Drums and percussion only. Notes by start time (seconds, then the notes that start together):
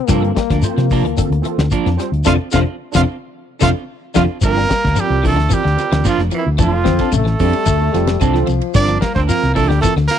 0.08 kick, snare, closed hi-hat, shekere
0.24 closed hi-hat
0.36 kick, snare, closed hi-hat, shekere
0.50 kick, snare, closed hi-hat
0.62 closed hi-hat, shekere
0.78 snare, closed hi-hat
0.91 kick, open hi-hat, shekere
1.06 closed hi-hat
1.18 kick, closed hi-hat, shekere
1.32 closed hi-hat
1.44 closed hi-hat, shekere
1.59 snare, closed hi-hat
1.71 kick, closed hi-hat, shekere
1.86 snare, closed hi-hat
1.99 snare, closed hi-hat, shekere
2.14 closed hi-hat
2.24 kick, snare, shekere
2.52 kick, snare, shekere
2.94 kick, snare, shekere
3.61 kick, snare, shekere
4.15 kick, snare, shekere
4.41 kick, ride bell, shekere
4.58 snare
4.70 kick, snare, ride bell, shekere
4.85 kick, snare
4.96 ride bell, shekere
5.24 kick, open hi-hat, shekere
5.39 snare
5.51 kick, ride bell, shekere
5.67 snare
5.78 snare, ride bell, shekere
5.92 snare, ride bell
6.05 kick, ride bell, shekere
6.19 snare
6.31 ride bell, shekere
6.58 kick, ride bell, shekere
6.86 kick, snare, ride bell, shekere
6.99 kick, snare, ride bell
7.12 ride bell, shekere
7.26 snare
7.39 kick, open hi-hat, shekere
7.53 ride bell
7.66 kick, ride bell, shekere
7.94 snare, ride bell, shekere
8.07 snare, ride bell
8.21 kick, ride bell, shekere
8.35 snare
8.47 ride bell, shekere
8.62 ride bell
8.74 kick, snare, ride bell, shekere
9.02 kick, snare, ride bell, shekere
9.16 kick, snare
9.29 ride bell, shekere
9.43 snare
9.56 kick, open hi-hat, shekere
9.71 snare
9.83 kick, snare, ride bell, shekere
9.97 snare
10.10 snare, ride bell, shekere